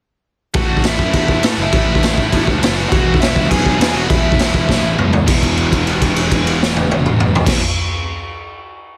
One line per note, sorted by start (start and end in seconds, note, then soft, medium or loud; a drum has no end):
0.54 0.66 A1 loud
0.54 0.85 A2 loud
0.54 0.85 E3 loud
0.54 0.84 A3 loud
0.54 0.83 F#4 medium
0.54 0.83 F#5 loud
0.54 kick loud
0.54 crash medium
0.69 0.81 A1 loud
0.77 kick medium
0.83 0.95 A1 medium
0.83 1.13 A2 medium
0.83 1.14 E3 medium
0.83 1.14 A3 medium
0.83 1.13 E5 loud
0.83 snare loud
0.83 crash medium
0.87 1.13 E4 medium
0.99 1.10 F#2 loud
0.99 kick medium
1.13 1.37 E2 medium
1.13 1.45 A2 loud
1.13 1.45 E3 loud
1.13 1.43 A3 loud
1.13 1.42 E4 medium
1.13 1.43 E5 loud
1.13 kick loud
1.13 crash medium
1.28 kick loud
1.43 1.55 A2 loud
1.43 1.72 A2 medium
1.43 1.74 E3 medium
1.43 1.73 A3 medium
1.43 snare loud
1.43 crash medium
1.58 1.70 F#1 medium
1.58 2.45 E4 medium
1.62 2.45 E5 medium
1.73 1.85 A1 loud
1.73 2.04 A2 loud
1.73 2.04 E3 loud
1.73 2.02 A3 loud
1.73 kick loud
1.73 crash medium
1.87 1.99 A1 medium
1.95 kick medium
2.02 2.14 A1 loud
2.02 2.31 A2 medium
2.02 2.32 E3 medium
2.02 2.32 A3 loud
2.02 snare loud
2.02 crash medium
2.17 2.29 A1 medium
2.17 kick medium
2.32 2.44 E2 medium
2.32 2.61 A2 loud
2.32 2.61 E3 loud
2.32 2.60 A3 loud
2.32 kick loud
2.32 crash medium
2.47 2.59 C#2 medium
2.47 kick medium
2.61 2.85 F#1 loud
2.61 2.90 A2 medium
2.61 2.91 E3 medium
2.61 2.90 A3 medium
2.61 snare loud
2.61 crash medium
2.89 3.03 E1 loud
2.89 3.20 E2 loud
2.89 3.19 B2 loud
2.89 3.19 E3 loud
2.89 3.18 F#4 medium
2.89 3.20 F#5 loud
2.89 kick loud
2.89 crash medium
3.06 3.17 E1 medium
3.14 kick loud
3.20 3.33 E1 loud
3.20 3.49 E2 medium
3.20 3.49 B2 medium
3.20 3.50 E3 medium
3.20 3.49 E4 medium
3.20 3.51 E5 loud
3.20 snare loud
3.20 crash medium
3.36 3.48 C#2 medium
3.36 kick medium
3.49 3.74 B1 medium
3.49 3.81 E2 loud
3.49 3.79 B2 loud
3.49 3.80 E3 loud
3.49 3.78 G#4 medium
3.49 3.77 G#5 loud
3.49 kick loud
3.49 crash medium
3.66 kick medium
3.78 3.92 E2 medium
3.78 4.09 E2 medium
3.78 3.94 B2 loud
3.78 4.10 E3 medium
3.78 3.93 G#4 medium
3.78 3.95 G#5 loud
3.78 snare loud
3.78 crash medium
3.94 4.07 E1 loud
3.94 5.12 E2 loud
3.94 5.12 B2 loud
3.94 5.13 E3 loud
3.94 4.02 F#4 medium
3.94 4.02 F#5 medium
4.09 4.22 E1 medium
4.09 4.40 E2 loud
4.09 4.39 B2 loud
4.09 4.38 E3 loud
4.09 4.95 E4 medium
4.09 4.95 E5 medium
4.09 kick loud
4.09 crash medium
4.25 4.36 E1 loud
4.32 kick medium
4.39 4.52 E1 medium
4.39 4.68 E2 medium
4.39 4.69 B2 medium
4.39 4.70 E3 medium
4.39 snare loud
4.39 crash medium
4.54 4.66 E1 medium
4.54 kick medium
4.69 4.80 B1 medium
4.69 4.99 E2 loud
4.69 4.98 B2 loud
4.69 4.97 E3 loud
4.69 kick loud
4.69 snare medium
4.83 4.95 A1 medium
4.98 5.22 C#2 loud
4.98 5.26 E2 medium
4.98 5.28 B2 medium
4.98 5.27 E3 medium
4.98 mid tom loud
5.13 floor tom loud
5.27 7.38 E1 medium
5.27 7.45 E2 loud
5.27 7.47 B2 loud
5.27 7.49 E3 loud
5.27 kick loud
5.27 crash medium
5.43 kick medium
5.43 crash soft
5.57 crash soft
5.72 kick medium
5.72 crash medium
5.87 crash medium
6.02 kick medium
6.02 crash medium
6.16 crash medium
6.31 kick medium
6.31 crash medium
6.47 crash medium
6.63 snare loud
6.77 high tom medium
6.91 high tom loud
7.06 mid tom loud
7.20 mid tom loud
7.35 floor tom loud
7.46 7.58 E1 loud
7.46 7.59 E2 loud
7.46 7.60 B2 loud
7.46 kick loud
7.46 snare loud
7.46 crash loud
7.50 7.61 E3 loud